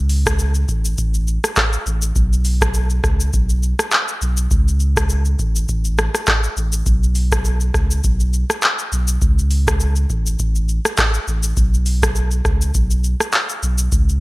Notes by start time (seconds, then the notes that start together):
Already playing: C#2
0.09 open hi-hat, shaker
0.26 kick, cross-stick, shaker
0.39 shaker
0.55 shaker
0.69 A1, kick, shaker
0.85 shaker
0.98 A1, kick, shaker
1.14 shaker
1.28 shaker
1.44 cross-stick, shaker
1.56 kick, cross-stick, clap, shaker
1.73 shaker
1.86 A1, shaker
2.02 shaker
2.16 B1, kick, shaker
2.33 shaker
2.45 open hi-hat, shaker
2.61 kick, cross-stick, shaker
2.74 shaker
2.90 shaker
3.04 C#2, kick, cross-stick, shaker
3.20 shaker
3.33 B1, kick, shaker
3.49 shaker
3.63 shaker
3.79 cross-stick, shaker
3.91 clap, shaker
4.08 shaker
4.22 B1, shaker
4.37 shaker
4.51 C#2, kick, shaker
4.68 shaker
4.80 shaker
4.97 kick, cross-stick, shaker
5.09 shaker
5.25 shaker
5.39 A1, kick, shaker
5.56 shaker
5.69 A1, kick, shaker
5.85 shaker
5.98 cross-stick, shaker
6.15 cross-stick, shaker
6.27 kick, cross-stick, clap, shaker
6.44 shaker
6.57 A1, shaker
6.72 shaker
6.86 B1, kick, shaker
7.03 shaker
7.15 open hi-hat, shaker
7.32 kick, cross-stick, shaker
7.45 shaker
7.60 shaker
7.74 C#2, kick, cross-stick, shaker
7.91 shaker
8.04 B1, kick, shaker
8.20 shaker
8.33 shaker
8.50 cross-stick, shaker
8.62 clap, shaker
8.79 shaker
8.92 B1, shaker
9.08 shaker
9.22 C#2, kick, shaker
9.39 shaker
9.51 open hi-hat, shaker
9.67 kick, cross-stick, shaker
9.80 shaker
9.96 shaker
10.10 A1, kick, shaker
10.26 shaker
10.39 A1, kick, shaker
10.55 shaker
10.69 shaker
10.85 cross-stick, shaker
10.97 kick, cross-stick, clap, shaker
11.14 shaker
11.28 A1, shaker
11.43 shaker
11.57 B1, kick, shaker
11.74 shaker
11.86 open hi-hat, shaker
12.02 kick, cross-stick, shaker
12.16 shaker
12.31 shaker
12.45 C#2, kick, cross-stick, shaker
12.62 shaker
12.74 B1, kick, shaker
12.91 shaker
13.04 shaker
13.20 cross-stick, shaker
13.32 clap, shaker
13.49 shaker
13.63 B1, shaker
13.78 shaker
13.92 C#2, kick, shaker
14.09 shaker